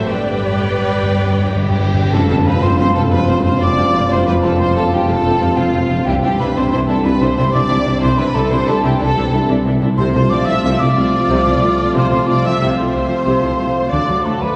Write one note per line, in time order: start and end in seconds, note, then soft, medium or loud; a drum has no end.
0.00 2.05 G2 soft
0.00 0.11 F#3 medium
0.00 0.10 F#4 medium
0.00 2.07 G4 soft
0.00 0.10 A4 medium
0.00 2.09 B4 soft
0.00 0.10 C5 soft
0.06 1.58 G4 soft
0.06 2.11 D5 soft
0.06 1.95 D5 medium
0.10 1.92 G1 medium
0.10 0.17 G2 soft
0.10 1.96 G3 medium
0.10 1.95 B4 medium
0.10 1.96 B4 medium
0.10 1.96 D5 medium
0.10 1.62 G5 medium
0.18 0.24 G2 soft
0.25 0.33 G2 soft
0.34 0.41 G2 soft
0.42 0.48 G2 soft
0.49 0.55 G2 soft
0.56 0.64 G2 soft
0.65 0.71 G2 soft
0.72 0.78 G2 soft
0.80 0.86 G2 soft
0.87 0.93 G2 soft
0.95 1.02 G2 soft
1.03 1.09 G2 soft
1.10 1.17 G2 soft
1.18 1.24 G2 soft
1.25 1.32 G2 medium
1.33 1.39 G2 medium
1.40 1.46 G2 medium
1.47 1.54 G2 medium
1.55 1.61 G2 medium
1.62 1.69 G2 medium
1.62 2.09 G4 medium
1.62 2.09 G5 medium
1.70 1.77 G2 medium
1.78 1.85 G2 medium
1.86 1.93 G2 medium
1.94 2.00 G2 medium
2.01 2.09 G2 medium
2.12 2.20 F1 medium
2.12 2.19 F2 medium
2.12 4.10 F2 medium
2.12 6.03 C3 medium
2.12 6.03 F3 medium
2.12 6.03 C4 medium
2.12 2.20 C4 medium
2.12 2.20 F4 medium
2.12 6.04 F4 medium
2.12 2.27 A4 medium
2.12 2.28 A4 medium
2.12 2.29 A5 medium
2.12 tam-tam medium
2.28 2.36 F1 medium
2.28 2.37 F1 medium
2.28 2.35 F2 medium
2.28 3.28 C4 soft
2.28 2.37 C4 medium
2.28 2.36 F4 medium
2.28 2.35 A4 medium
2.28 2.45 A4 medium
2.28 2.48 A5 medium
2.45 2.53 F1 medium
2.45 2.52 F2 medium
2.45 2.53 C4 medium
2.45 2.53 F4 medium
2.45 2.62 B4 medium
2.45 2.78 F5 soft
2.45 2.64 B5 medium
2.61 2.70 F1 medium
2.61 2.69 F2 medium
2.61 2.69 C4 medium
2.61 2.70 F4 medium
2.61 2.77 C5 medium
2.61 2.79 C5 medium
2.61 2.95 C5 medium
2.61 2.78 C6 medium
2.79 2.85 F1 medium
2.79 2.86 F1 medium
2.79 2.86 F2 medium
2.79 2.86 C4 medium
2.79 2.86 F4 soft
2.79 2.95 C5 medium
2.79 2.96 C5 medium
2.79 3.45 F5 soft
2.79 2.95 C6 medium
2.94 3.02 F1 medium
2.94 3.02 F2 medium
2.94 3.03 C4 soft
2.94 3.02 F4 medium
2.94 3.01 A4 medium
2.94 3.12 A4 medium
2.94 3.01 A5 medium
3.11 3.18 F1 medium
3.11 3.19 F1 medium
3.11 3.19 F2 medium
3.11 5.08 C3 medium
3.11 3.19 C4 medium
3.11 3.19 F4 medium
3.11 3.28 B4 medium
3.11 3.17 B5 medium
3.28 3.35 F1 medium
3.28 3.36 F2 medium
3.28 3.36 C4 soft
3.28 4.27 C4 soft
3.28 3.35 F4 soft
3.28 3.42 C5 medium
3.28 3.44 C5 medium
3.28 3.45 C6 medium
3.43 3.51 F1 medium
3.43 3.52 F1 medium
3.43 3.52 F2 medium
3.43 3.52 C4 medium
3.43 3.52 F4 soft
3.43 3.60 C5 medium
3.43 3.61 C5 medium
3.43 3.77 F5 soft
3.43 3.62 C6 medium
3.61 3.68 F1 medium
3.61 3.68 F2 medium
3.61 3.68 C4 soft
3.61 3.68 F4 medium
3.61 3.94 C5 soft
3.61 4.11 D5 medium
3.61 4.10 D5 medium
3.61 4.10 D6 medium
3.78 3.85 F1 medium
3.78 3.85 F2 medium
3.78 3.84 C4 soft
3.78 3.85 F4 soft
3.78 4.43 F5 soft
3.94 4.01 F1 medium
3.94 4.01 F2 medium
3.94 4.02 C4 soft
3.94 4.02 F4 soft
3.94 4.60 C5 soft
4.10 4.17 F1 medium
4.10 4.18 F1 medium
4.10 4.17 F2 medium
4.10 6.08 F2 medium
4.10 4.19 C4 medium
4.10 4.19 F4 medium
4.10 4.27 C5 medium
4.10 4.27 C6 medium
4.26 4.34 F1 medium
4.26 4.34 F2 medium
4.26 5.24 C4 soft
4.26 4.34 C4 soft
4.26 4.35 F4 medium
4.26 4.33 B4 medium
4.26 4.34 B4 medium
4.26 4.44 B5 medium
4.43 4.50 F1 medium
4.43 4.50 F2 medium
4.43 4.50 C4 medium
4.43 4.51 F4 soft
4.43 4.50 A4 medium
4.43 4.60 A4 medium
4.43 4.75 F5 soft
4.43 4.61 A5 medium
4.59 4.66 F1 medium
4.59 4.67 F1 medium
4.59 4.66 F2 medium
4.59 4.67 C4 medium
4.59 4.68 F4 medium
4.59 4.76 C5 medium
4.59 4.92 C5 medium
4.59 4.76 C6 medium
4.76 4.83 F1 medium
4.76 4.83 F2 medium
4.76 4.83 C4 medium
4.76 4.83 F4 medium
4.76 4.93 A4 medium
4.76 5.41 F5 medium
4.76 4.93 A5 medium
4.92 4.99 F1 medium
4.92 4.99 F2 medium
4.92 4.99 C4 soft
4.92 4.99 F4 medium
4.92 5.09 G4 medium
4.92 5.10 G4 medium
4.92 5.10 G5 medium
5.08 5.15 F1 medium
5.08 5.16 F1 medium
5.08 5.16 F2 medium
5.08 6.05 C3 medium
5.08 5.15 C4 medium
5.08 5.16 F4 soft
5.08 5.58 A4 medium
5.08 5.58 A5 medium
5.25 5.32 F1 medium
5.25 5.32 F2 medium
5.25 9.16 C4 soft
5.25 5.32 C4 medium
5.25 5.32 F4 soft
5.41 5.48 F1 medium
5.41 5.48 F2 medium
5.41 5.48 C4 soft
5.41 5.48 F4 soft
5.41 5.73 F5 soft
5.56 5.64 F1 medium
5.56 5.65 F1 medium
5.56 5.65 F2 medium
5.56 5.63 C4 medium
5.56 5.63 F4 medium
5.56 6.06 F4 medium
5.56 6.07 F4 medium
5.56 5.89 C5 soft
5.56 6.07 F5 medium
5.74 5.81 F1 medium
5.74 5.81 F2 medium
5.74 5.80 C4 soft
5.74 5.80 F4 soft
5.74 6.08 F5 soft
5.90 5.96 F1 medium
5.90 5.97 F1 medium
5.90 5.97 F2 medium
5.90 5.97 C4 soft
5.90 5.97 F4 medium
5.90 6.87 C5 soft
6.05 6.13 C2 medium
6.05 6.13 C3 medium
6.05 8.01 C3 medium
6.05 9.80 C3 medium
6.05 9.80 E3 medium
6.05 9.81 C4 medium
6.05 9.81 D4 medium
6.05 6.14 D4 medium
6.05 6.14 E4 medium
6.05 6.22 G4 medium
6.05 6.14 G4 medium
6.05 6.21 G5 medium
6.22 6.30 C2 medium
6.22 6.29 C3 medium
6.22 7.20 D4 soft
6.22 6.30 D4 soft
6.22 6.30 E4 medium
6.22 6.39 G4 medium
6.22 6.39 G5 medium
6.39 6.46 C2 medium
6.39 6.46 C3 medium
6.39 6.47 D4 medium
6.39 6.47 E4 medium
6.39 6.56 B4 medium
6.39 6.47 B4 medium
6.39 6.70 E5 soft
6.39 6.45 B5 medium
6.55 6.63 C2 medium
6.55 6.62 C3 medium
6.55 6.62 D4 medium
6.55 6.63 E4 medium
6.55 6.71 C5 medium
6.55 6.64 C5 medium
6.55 7.53 D5 medium
6.55 6.63 C6 medium
6.72 6.79 C2 medium
6.72 6.79 C3 medium
6.72 6.79 D4 medium
6.72 6.79 E4 medium
6.72 6.78 C5 medium
6.72 6.79 C5 medium
6.72 7.36 E5 soft
6.72 6.88 C6 medium
6.88 6.95 C2 medium
6.88 6.96 C2 medium
6.88 6.95 C3 medium
6.88 6.95 D4 medium
6.88 6.95 E4 medium
6.88 7.04 A4 medium
6.88 7.86 C5 soft
6.88 7.06 A5 medium
7.04 7.11 C2 medium
7.04 7.12 C2 medium
7.04 7.12 C3 medium
7.04 9.00 G3 medium
7.04 7.10 D4 medium
7.04 7.11 E4 medium
7.04 7.21 B4 medium
7.04 7.22 B5 medium
7.21 7.28 C2 medium
7.21 7.27 C3 medium
7.21 7.28 D4 medium
7.21 8.18 D4 soft
7.21 7.27 E4 medium
7.21 7.36 C5 medium
7.21 7.37 C5 medium
7.21 7.37 C6 medium
7.37 7.44 C2 medium
7.37 7.44 C3 medium
7.37 7.45 D4 medium
7.37 7.44 E4 soft
7.37 7.53 C5 medium
7.37 7.45 C5 medium
7.37 7.70 E5 soft
7.37 7.53 C6 medium
7.53 7.60 C2 medium
7.53 7.61 C2 medium
7.53 7.60 C3 medium
7.53 7.60 D4 medium
7.53 7.61 E4 medium
7.53 8.01 D5 medium
7.53 8.50 D5 medium
7.53 7.80 D6 medium
7.70 7.76 C2 medium
7.70 7.77 C2 medium
7.70 7.76 C3 medium
7.70 7.76 D4 soft
7.70 7.76 E4 soft
7.70 8.34 E5 soft
7.86 7.92 C2 medium
7.86 7.93 C2 medium
7.86 7.92 C3 medium
7.86 7.93 D4 medium
7.86 7.93 E4 medium
7.86 8.83 C5 soft
8.01 8.09 C2 medium
8.01 9.97 C3 medium
8.01 8.09 C3 medium
8.01 8.08 D4 medium
8.01 8.08 E4 medium
8.01 8.18 C5 medium
8.01 8.19 C6 medium
8.18 8.25 C2 medium
8.18 8.26 C3 medium
8.18 8.25 D4 medium
8.18 9.16 D4 soft
8.18 8.25 E4 medium
8.18 8.35 B4 medium
8.18 8.36 B5 medium
8.34 8.41 C2 medium
8.34 8.42 C2 medium
8.34 8.41 C3 medium
8.34 8.41 D4 medium
8.34 8.41 E4 medium
8.34 8.51 A4 medium
8.34 8.52 A4 medium
8.34 8.66 E5 medium
8.34 8.51 A5 medium
8.50 8.58 C2 medium
8.50 8.57 C3 medium
8.50 8.58 D4 medium
8.50 8.58 E4 medium
8.50 8.67 C5 medium
8.50 9.47 D5 medium
8.50 8.67 C6 medium
8.67 8.74 C2 medium
8.67 8.75 C2 medium
8.67 8.73 C3 medium
8.67 8.75 D4 medium
8.67 8.74 E4 medium
8.67 8.84 A4 medium
8.67 9.32 E5 medium
8.67 8.87 A5 medium
8.84 8.91 C2 medium
8.84 8.90 C3 medium
8.84 8.91 D4 medium
8.84 8.91 E4 medium
8.84 9.00 G4 medium
8.84 9.81 C5 soft
8.84 9.03 G5 medium
9.00 9.07 C2 medium
9.00 9.07 C3 medium
9.00 9.99 G3 medium
9.00 9.07 D4 medium
9.00 9.07 E4 medium
9.00 9.48 A4 medium
9.00 9.49 A4 medium
9.00 9.49 A5 medium
9.16 9.23 C2 medium
9.16 9.23 C3 medium
9.16 9.99 D4 medium
9.16 9.24 D4 medium
9.16 9.24 E4 medium
9.32 9.39 C2 medium
9.32 9.40 C2 medium
9.32 9.39 C3 medium
9.32 9.39 D4 medium
9.32 9.39 E4 medium
9.32 9.64 E5 soft
9.49 9.56 C2 medium
9.49 9.55 C3 medium
9.49 9.56 D4 medium
9.49 9.56 E4 medium
9.49 9.99 D5 medium
9.65 9.72 C2 medium
9.65 9.72 C3 medium
9.65 9.73 D4 soft
9.65 9.73 E4 soft
9.65 9.99 E5 soft
9.82 9.88 C2 medium
9.82 9.88 C3 medium
9.82 9.89 D4 medium
9.82 9.89 E4 medium
9.82 13.72 C5 soft
9.97 10.05 C2 medium
9.97 13.88 C3 medium
9.97 10.04 C3 medium
9.97 10.43 C3 medium
9.97 11.94 C3 medium
9.97 10.14 C3 medium
9.97 13.88 F3 medium
9.97 13.88 A3 medium
9.97 13.88 C4 medium
9.97 13.89 F4 medium
9.97 10.13 C5 medium
9.97 10.03 C6 medium
10.13 10.21 C2 soft
10.13 10.21 C2 medium
10.13 10.21 C3 soft
10.13 10.21 F3 medium
10.13 11.12 F4 soft
10.13 10.30 C5 medium
10.13 10.31 C6 medium
10.29 10.37 C2 soft
10.29 10.38 C2 medium
10.29 10.37 C3 soft
10.29 10.38 A3 soft
10.29 10.47 D5 medium
10.29 10.63 F5 soft
10.29 10.46 D6 medium
10.45 10.54 C2 soft
10.45 10.53 C3 soft
10.45 10.54 F3 soft
10.45 10.79 A4 medium
10.45 10.63 E5 medium
10.45 10.64 E5 medium
10.45 10.62 E6 medium
10.63 10.70 C2 medium
10.63 10.71 C3 medium
10.63 10.79 C3 medium
10.63 10.80 E5 medium
10.63 10.71 E5 medium
10.63 11.29 F5 soft
10.63 10.81 E6 medium
10.79 10.86 C2 soft
10.79 10.87 C2 medium
10.79 10.86 C3 soft
10.79 10.88 F3 soft
10.79 11.45 A4 soft
10.79 11.94 D5 medium
10.79 11.93 D5 medium
10.79 11.94 D6 medium
10.96 11.03 C2 soft
10.96 11.03 C3 soft
10.96 11.03 A3 soft
10.96 12.93 C4 medium
11.13 12.10 F4 soft
11.29 11.36 C2 medium
11.29 11.44 C3 medium
11.29 11.36 C3 medium
11.29 11.61 F5 soft
11.45 11.53 C2 soft
11.45 11.52 C3 soft
11.45 11.52 F3 medium
11.45 11.77 A4 soft
11.62 11.69 C2 soft
11.62 11.69 C3 soft
11.62 11.68 A3 soft
11.62 12.27 F5 soft
11.79 12.44 A4 soft
11.95 12.02 C2 medium
11.95 12.01 C3 medium
11.95 13.94 C3 medium
11.95 12.11 C3 medium
11.95 12.10 C5 medium
11.95 12.12 C5 medium
11.95 12.10 C6 medium
12.10 12.18 C2 soft
12.10 12.19 C2 soft
12.10 12.18 C3 soft
12.10 12.18 F3 soft
12.10 13.09 F4 soft
12.10 12.18 C5 medium
12.10 12.28 C5 medium
12.10 12.28 C6 medium
12.26 12.35 C2 soft
12.26 12.34 C3 soft
12.26 12.35 A3 soft
12.26 12.44 D5 medium
12.26 12.45 D5 medium
12.26 12.60 F5 soft
12.26 12.43 D6 medium
12.44 12.51 C2 soft
12.44 12.51 C3 soft
12.44 12.51 F3 soft
12.44 12.77 A4 soft
12.44 12.60 E5 medium
12.44 12.59 E5 medium
12.44 12.60 E6 medium
12.60 12.68 C2 medium
12.60 12.67 C3 medium
12.60 12.76 C3 medium
12.60 12.77 E5 medium
12.60 12.67 E5 medium
12.60 13.26 F5 soft
12.60 12.67 E6 medium
12.77 12.84 C2 soft
12.77 12.84 C3 soft
12.77 12.85 F3 soft
12.77 13.42 A4 soft
12.77 13.90 C5 medium
12.77 13.91 C5 medium
12.77 13.90 C6 medium
12.93 13.01 C2 soft
12.93 13.00 C3 soft
12.93 13.01 A3 soft
12.93 13.94 C4 soft
13.10 13.94 F4 soft
13.26 13.33 C2 medium
13.26 13.32 C3 medium
13.26 13.42 C3 medium
13.26 13.58 F5 soft
13.42 13.49 C2 soft
13.42 13.50 C2 soft
13.42 13.49 C3 soft
13.42 13.50 F3 soft
13.42 13.75 A4 soft
13.59 13.66 C2 soft
13.59 13.65 C3 soft
13.59 13.67 A3 soft
13.59 13.94 F5 soft
13.76 14.56 A4 soft
13.91 13.99 D2 medium
13.91 14.00 D2 medium
13.91 14.56 A2 soft
13.91 13.99 D3 medium
13.91 14.56 D3 medium
13.91 14.08 D3 soft
13.91 14.56 F#3 soft
13.91 14.56 A3 medium
13.91 14.56 D4 medium
13.91 14.56 F#4 medium
13.91 14.25 D5 medium
13.91 14.27 D6 medium
14.08 14.15 D2 soft
14.08 14.15 D3 soft
14.08 14.16 F#3 soft
14.08 14.56 F#4 soft
14.24 14.32 D2 soft
14.24 14.32 D3 soft
14.24 14.33 A3 soft
14.24 14.41 A4 soft
14.24 14.42 A4 soft
14.24 14.56 D5 soft
14.24 14.43 A5 medium
14.41 14.48 D2 soft
14.41 14.49 D2 soft
14.41 14.49 D3 soft
14.41 14.49 F#3 soft
14.41 14.56 B4 medium
14.41 14.56 F#5 soft
14.41 14.56 B5 medium